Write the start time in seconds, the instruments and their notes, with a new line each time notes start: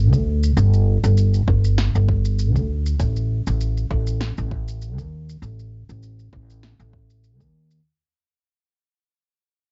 Already playing: upright bass G1
0.13 upright bass D2, kick, shaker
0.43 shaker
0.57 upright bass G1, shaker
0.73 shaker
1.04 upright bass G1, shaker
1.17 shaker
1.34 shaker
1.48 upright bass G1, kick
1.64 shaker
1.78 snare, shaker
1.95 upright bass G1, shaker
2.08 kick
2.25 shaker
2.39 shaker
2.55 upright bass D2, kick, shaker
2.86 shaker
3.00 upright bass A1, kick, shaker
3.16 shaker
3.47 upright bass A1, shaker
3.61 shaker
3.77 shaker
3.91 upright bass A1, kick
4.07 shaker
4.21 snare, shaker
4.37 upright bass A1, shaker
4.51 kick
4.68 shaker
4.82 shaker
4.98 upright bass D#2, kick, shaker
5.29 shaker
5.42 upright bass A1, shaker
5.59 shaker
5.89 upright bass A1, shaker
6.03 shaker
6.19 shaker
6.33 upright bass A1, kick
6.50 shaker
6.63 snare, shaker
6.80 upright bass A1, shaker
6.93 kick
7.10 shaker
7.24 shaker
7.40 upright bass D#2, kick, shaker
7.71 shaker